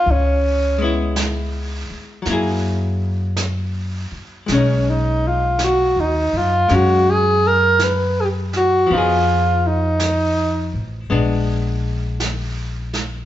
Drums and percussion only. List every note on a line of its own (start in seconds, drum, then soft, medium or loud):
0.06 brush sweep soft
1.16 brush sweep soft
1.16 snare soft
1.16 hi-hat pedal soft
2.25 brush sweep soft
2.25 snare soft
3.37 brush sweep soft
3.37 snare soft
3.37 hi-hat pedal soft
4.48 brush sweep soft
4.48 snare soft
5.59 brush sweep soft
5.59 snare soft
5.59 hi-hat pedal soft
6.69 brush sweep soft
6.69 snare soft
7.79 brush sweep soft
7.79 snare soft
7.79 hi-hat pedal soft
8.53 snare soft
8.90 brush sweep soft
10.00 brush sweep soft
10.00 snare soft
10.00 hi-hat pedal soft
11.09 brush sweep soft
12.20 brush sweep soft
12.20 snare soft
12.20 hi-hat pedal soft
12.93 snare soft